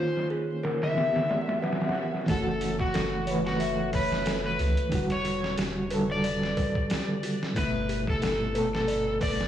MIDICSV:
0, 0, Header, 1, 8, 480
1, 0, Start_track
1, 0, Tempo, 659341
1, 1663, Time_signature, 4, 2, 24, 8
1, 6900, End_track
2, 0, Start_track
2, 0, Title_t, "Electric slide guitar"
2, 0, Program_c, 0, 29
2, 0, Note_on_c, 0, 72, 81
2, 196, Note_off_c, 0, 72, 0
2, 607, Note_on_c, 0, 76, 83
2, 1583, Note_off_c, 0, 76, 0
2, 1672, Note_on_c, 0, 69, 96
2, 2000, Note_off_c, 0, 69, 0
2, 2042, Note_on_c, 0, 66, 96
2, 2466, Note_off_c, 0, 66, 0
2, 2522, Note_on_c, 0, 66, 90
2, 2834, Note_off_c, 0, 66, 0
2, 2874, Note_on_c, 0, 71, 94
2, 3201, Note_off_c, 0, 71, 0
2, 3245, Note_on_c, 0, 71, 93
2, 3667, Note_off_c, 0, 71, 0
2, 3728, Note_on_c, 0, 73, 94
2, 4037, Note_off_c, 0, 73, 0
2, 4451, Note_on_c, 0, 74, 88
2, 5425, Note_off_c, 0, 74, 0
2, 5516, Note_on_c, 0, 71, 106
2, 5842, Note_off_c, 0, 71, 0
2, 5894, Note_on_c, 0, 69, 98
2, 6312, Note_off_c, 0, 69, 0
2, 6369, Note_on_c, 0, 69, 91
2, 6678, Note_off_c, 0, 69, 0
2, 6717, Note_on_c, 0, 74, 91
2, 6900, Note_off_c, 0, 74, 0
2, 6900, End_track
3, 0, Start_track
3, 0, Title_t, "Music box"
3, 0, Program_c, 1, 10
3, 0, Note_on_c, 1, 65, 70
3, 201, Note_off_c, 1, 65, 0
3, 221, Note_on_c, 1, 68, 97
3, 440, Note_off_c, 1, 68, 0
3, 462, Note_on_c, 1, 70, 89
3, 681, Note_off_c, 1, 70, 0
3, 703, Note_on_c, 1, 76, 74
3, 921, Note_off_c, 1, 76, 0
3, 943, Note_on_c, 1, 74, 69
3, 1172, Note_off_c, 1, 74, 0
3, 1181, Note_on_c, 1, 71, 70
3, 1329, Note_off_c, 1, 71, 0
3, 1423, Note_on_c, 1, 67, 66
3, 1641, Note_off_c, 1, 67, 0
3, 1663, Note_on_c, 1, 64, 83
3, 1892, Note_off_c, 1, 64, 0
3, 1899, Note_on_c, 1, 66, 79
3, 2120, Note_off_c, 1, 66, 0
3, 2140, Note_on_c, 1, 69, 97
3, 2360, Note_off_c, 1, 69, 0
3, 2380, Note_on_c, 1, 73, 91
3, 2600, Note_off_c, 1, 73, 0
3, 2620, Note_on_c, 1, 76, 77
3, 2840, Note_off_c, 1, 76, 0
3, 2862, Note_on_c, 1, 73, 76
3, 3092, Note_off_c, 1, 73, 0
3, 3101, Note_on_c, 1, 69, 75
3, 3249, Note_off_c, 1, 69, 0
3, 3342, Note_on_c, 1, 66, 73
3, 3561, Note_off_c, 1, 66, 0
3, 3582, Note_on_c, 1, 64, 85
3, 3812, Note_off_c, 1, 64, 0
3, 3820, Note_on_c, 1, 66, 77
3, 4040, Note_off_c, 1, 66, 0
3, 4061, Note_on_c, 1, 67, 102
3, 4281, Note_off_c, 1, 67, 0
3, 4302, Note_on_c, 1, 71, 101
3, 4521, Note_off_c, 1, 71, 0
3, 4542, Note_on_c, 1, 74, 79
3, 4761, Note_off_c, 1, 74, 0
3, 4783, Note_on_c, 1, 71, 80
3, 5012, Note_off_c, 1, 71, 0
3, 5023, Note_on_c, 1, 67, 76
3, 5170, Note_off_c, 1, 67, 0
3, 5264, Note_on_c, 1, 66, 75
3, 5482, Note_off_c, 1, 66, 0
3, 5503, Note_on_c, 1, 64, 83
3, 5732, Note_off_c, 1, 64, 0
3, 5742, Note_on_c, 1, 67, 80
3, 5961, Note_off_c, 1, 67, 0
3, 5983, Note_on_c, 1, 69, 103
3, 6201, Note_off_c, 1, 69, 0
3, 6223, Note_on_c, 1, 71, 99
3, 6441, Note_off_c, 1, 71, 0
3, 6462, Note_on_c, 1, 74, 81
3, 6681, Note_off_c, 1, 74, 0
3, 6702, Note_on_c, 1, 71, 82
3, 6900, Note_off_c, 1, 71, 0
3, 6900, End_track
4, 0, Start_track
4, 0, Title_t, "Synth drone"
4, 0, Program_c, 2, 95
4, 0, Note_on_c, 2, 61, 84
4, 1674, Note_off_c, 2, 61, 0
4, 6900, End_track
5, 0, Start_track
5, 0, Title_t, "Reed electric piano"
5, 0, Program_c, 3, 4
5, 0, Control_c, 3, 64, 127
5, 0, Note_on_c, 3, 51, 68
5, 0, Note_on_c, 3, 58, 67
5, 0, Note_on_c, 3, 61, 61
5, 0, Note_on_c, 3, 65, 79
5, 669, Note_off_c, 3, 51, 0
5, 676, Note_off_c, 3, 58, 0
5, 682, Note_off_c, 3, 61, 0
5, 688, Note_on_c, 3, 52, 68
5, 689, Note_off_c, 3, 65, 0
5, 708, Note_on_c, 3, 59, 64
5, 713, Control_c, 3, 64, 0
5, 727, Note_on_c, 3, 67, 77
5, 820, Control_c, 3, 64, 127
5, 1630, Note_off_c, 3, 52, 0
5, 1639, Note_off_c, 3, 59, 0
5, 1646, Note_on_c, 3, 52, 72
5, 1649, Note_off_c, 3, 67, 0
5, 1664, Note_on_c, 3, 57, 65
5, 1674, Control_c, 3, 64, 0
5, 1684, Note_on_c, 3, 66, 84
5, 1785, Control_c, 3, 64, 127
5, 2348, Note_off_c, 3, 52, 0
5, 2358, Note_off_c, 3, 57, 0
5, 2366, Note_on_c, 3, 52, 82
5, 2368, Note_off_c, 3, 66, 0
5, 2386, Note_on_c, 3, 57, 74
5, 2405, Note_on_c, 3, 71, 92
5, 3548, Note_off_c, 3, 52, 0
5, 3559, Note_off_c, 3, 57, 0
5, 3563, Note_on_c, 3, 50, 74
5, 3568, Note_off_c, 3, 71, 0
5, 3583, Note_on_c, 3, 55, 67
5, 3594, Control_c, 3, 64, 0
5, 3603, Note_on_c, 3, 66, 80
5, 3732, Control_c, 3, 64, 127
5, 4267, Note_off_c, 3, 50, 0
5, 4277, Note_off_c, 3, 55, 0
5, 4285, Note_on_c, 3, 50, 86
5, 4287, Note_off_c, 3, 66, 0
5, 4304, Note_on_c, 3, 55, 75
5, 4325, Note_on_c, 3, 69, 92
5, 5468, Note_off_c, 3, 50, 0
5, 5478, Note_off_c, 3, 55, 0
5, 5487, Note_on_c, 3, 47, 73
5, 5488, Note_off_c, 3, 69, 0
5, 5507, Note_on_c, 3, 57, 72
5, 5514, Control_c, 3, 64, 0
5, 5527, Note_on_c, 3, 64, 84
5, 5625, Control_c, 3, 64, 127
5, 6189, Note_off_c, 3, 47, 0
5, 6199, Note_off_c, 3, 57, 0
5, 6207, Note_on_c, 3, 47, 82
5, 6209, Note_off_c, 3, 64, 0
5, 6228, Note_on_c, 3, 57, 78
5, 6247, Note_on_c, 3, 69, 95
5, 6900, Note_off_c, 3, 47, 0
5, 6900, Note_off_c, 3, 57, 0
5, 6900, Note_off_c, 3, 69, 0
5, 6900, End_track
6, 0, Start_track
6, 0, Title_t, "Analog synth bass"
6, 0, Program_c, 4, 38
6, 1663, Note_on_c, 4, 30, 102
6, 2122, Note_off_c, 4, 30, 0
6, 2146, Note_on_c, 4, 30, 95
6, 2844, Note_off_c, 4, 30, 0
6, 2866, Note_on_c, 4, 30, 101
6, 3324, Note_off_c, 4, 30, 0
6, 3347, Note_on_c, 4, 37, 88
6, 3461, Note_off_c, 4, 37, 0
6, 3584, Note_on_c, 4, 28, 99
6, 4043, Note_off_c, 4, 28, 0
6, 4067, Note_on_c, 4, 28, 93
6, 4764, Note_off_c, 4, 28, 0
6, 5506, Note_on_c, 4, 31, 105
6, 5964, Note_off_c, 4, 31, 0
6, 5986, Note_on_c, 4, 31, 86
6, 6684, Note_off_c, 4, 31, 0
6, 6708, Note_on_c, 4, 31, 103
6, 6900, Note_off_c, 4, 31, 0
6, 6900, End_track
7, 0, Start_track
7, 0, Title_t, "Swell"
7, 0, Program_c, 5, 103
7, 703, Note_on_c, 5, 60, 69
7, 1663, Note_off_c, 5, 60, 0
7, 6900, End_track
8, 0, Start_track
8, 0, Title_t, "Drums"
8, 125, Note_on_c, 9, 38, 39
8, 197, Note_off_c, 9, 38, 0
8, 221, Note_on_c, 9, 46, 70
8, 294, Note_off_c, 9, 46, 0
8, 461, Note_on_c, 9, 46, 67
8, 471, Note_on_c, 9, 38, 93
8, 534, Note_off_c, 9, 46, 0
8, 544, Note_off_c, 9, 38, 0
8, 594, Note_on_c, 9, 46, 74
8, 604, Note_on_c, 9, 38, 97
8, 667, Note_off_c, 9, 46, 0
8, 676, Note_off_c, 9, 38, 0
8, 702, Note_on_c, 9, 46, 69
8, 711, Note_on_c, 9, 38, 92
8, 775, Note_off_c, 9, 46, 0
8, 784, Note_off_c, 9, 38, 0
8, 835, Note_on_c, 9, 46, 76
8, 844, Note_on_c, 9, 38, 100
8, 908, Note_off_c, 9, 46, 0
8, 917, Note_off_c, 9, 38, 0
8, 942, Note_on_c, 9, 46, 74
8, 951, Note_on_c, 9, 38, 91
8, 1014, Note_off_c, 9, 46, 0
8, 1024, Note_off_c, 9, 38, 0
8, 1074, Note_on_c, 9, 46, 66
8, 1083, Note_on_c, 9, 38, 88
8, 1147, Note_off_c, 9, 46, 0
8, 1156, Note_off_c, 9, 38, 0
8, 1182, Note_on_c, 9, 46, 61
8, 1191, Note_on_c, 9, 38, 85
8, 1248, Note_off_c, 9, 46, 0
8, 1248, Note_on_c, 9, 46, 63
8, 1257, Note_off_c, 9, 38, 0
8, 1257, Note_on_c, 9, 38, 88
8, 1313, Note_off_c, 9, 46, 0
8, 1313, Note_on_c, 9, 46, 63
8, 1323, Note_off_c, 9, 38, 0
8, 1323, Note_on_c, 9, 38, 79
8, 1368, Note_off_c, 9, 46, 0
8, 1368, Note_on_c, 9, 46, 58
8, 1377, Note_off_c, 9, 38, 0
8, 1377, Note_on_c, 9, 38, 85
8, 1421, Note_off_c, 9, 46, 0
8, 1421, Note_on_c, 9, 46, 60
8, 1450, Note_off_c, 9, 38, 0
8, 1494, Note_off_c, 9, 46, 0
8, 1561, Note_on_c, 9, 38, 41
8, 1634, Note_off_c, 9, 38, 0
8, 1661, Note_on_c, 9, 46, 85
8, 1662, Note_on_c, 9, 36, 105
8, 1734, Note_off_c, 9, 46, 0
8, 1735, Note_off_c, 9, 36, 0
8, 1900, Note_on_c, 9, 46, 65
8, 1973, Note_off_c, 9, 46, 0
8, 2034, Note_on_c, 9, 36, 96
8, 2107, Note_off_c, 9, 36, 0
8, 2140, Note_on_c, 9, 46, 80
8, 2150, Note_on_c, 9, 38, 108
8, 2213, Note_off_c, 9, 46, 0
8, 2223, Note_off_c, 9, 38, 0
8, 2381, Note_on_c, 9, 46, 67
8, 2454, Note_off_c, 9, 46, 0
8, 2524, Note_on_c, 9, 38, 52
8, 2596, Note_off_c, 9, 38, 0
8, 2621, Note_on_c, 9, 46, 86
8, 2694, Note_off_c, 9, 46, 0
8, 2861, Note_on_c, 9, 46, 74
8, 2863, Note_on_c, 9, 36, 95
8, 2934, Note_off_c, 9, 46, 0
8, 2935, Note_off_c, 9, 36, 0
8, 3003, Note_on_c, 9, 38, 50
8, 3076, Note_off_c, 9, 38, 0
8, 3100, Note_on_c, 9, 46, 90
8, 3109, Note_on_c, 9, 38, 117
8, 3172, Note_off_c, 9, 46, 0
8, 3182, Note_off_c, 9, 38, 0
8, 3343, Note_on_c, 9, 46, 62
8, 3415, Note_off_c, 9, 46, 0
8, 3474, Note_on_c, 9, 42, 45
8, 3547, Note_off_c, 9, 42, 0
8, 3580, Note_on_c, 9, 46, 83
8, 3582, Note_on_c, 9, 36, 109
8, 3652, Note_off_c, 9, 46, 0
8, 3655, Note_off_c, 9, 36, 0
8, 3712, Note_on_c, 9, 42, 45
8, 3785, Note_off_c, 9, 42, 0
8, 3821, Note_on_c, 9, 46, 71
8, 3894, Note_off_c, 9, 46, 0
8, 3962, Note_on_c, 9, 38, 46
8, 4035, Note_off_c, 9, 38, 0
8, 4059, Note_on_c, 9, 46, 87
8, 4069, Note_on_c, 9, 38, 110
8, 4132, Note_off_c, 9, 46, 0
8, 4142, Note_off_c, 9, 38, 0
8, 4299, Note_on_c, 9, 46, 69
8, 4372, Note_off_c, 9, 46, 0
8, 4542, Note_on_c, 9, 46, 85
8, 4615, Note_off_c, 9, 46, 0
8, 4684, Note_on_c, 9, 38, 44
8, 4756, Note_off_c, 9, 38, 0
8, 4783, Note_on_c, 9, 46, 71
8, 4784, Note_on_c, 9, 36, 94
8, 4856, Note_off_c, 9, 46, 0
8, 4857, Note_off_c, 9, 36, 0
8, 4917, Note_on_c, 9, 36, 91
8, 4989, Note_off_c, 9, 36, 0
8, 5023, Note_on_c, 9, 46, 91
8, 5032, Note_on_c, 9, 38, 117
8, 5096, Note_off_c, 9, 46, 0
8, 5105, Note_off_c, 9, 38, 0
8, 5265, Note_on_c, 9, 46, 68
8, 5338, Note_off_c, 9, 46, 0
8, 5408, Note_on_c, 9, 38, 47
8, 5481, Note_off_c, 9, 38, 0
8, 5505, Note_on_c, 9, 36, 112
8, 5505, Note_on_c, 9, 46, 89
8, 5578, Note_off_c, 9, 36, 0
8, 5578, Note_off_c, 9, 46, 0
8, 5746, Note_on_c, 9, 46, 71
8, 5818, Note_off_c, 9, 46, 0
8, 5877, Note_on_c, 9, 36, 96
8, 5950, Note_off_c, 9, 36, 0
8, 5985, Note_on_c, 9, 46, 81
8, 5994, Note_on_c, 9, 38, 111
8, 6058, Note_off_c, 9, 46, 0
8, 6067, Note_off_c, 9, 38, 0
8, 6225, Note_on_c, 9, 46, 69
8, 6298, Note_off_c, 9, 46, 0
8, 6368, Note_on_c, 9, 38, 58
8, 6441, Note_off_c, 9, 38, 0
8, 6466, Note_on_c, 9, 46, 81
8, 6539, Note_off_c, 9, 46, 0
8, 6705, Note_on_c, 9, 36, 89
8, 6707, Note_on_c, 9, 46, 79
8, 6778, Note_off_c, 9, 36, 0
8, 6779, Note_off_c, 9, 46, 0
8, 6848, Note_on_c, 9, 38, 52
8, 6900, Note_off_c, 9, 38, 0
8, 6900, End_track
0, 0, End_of_file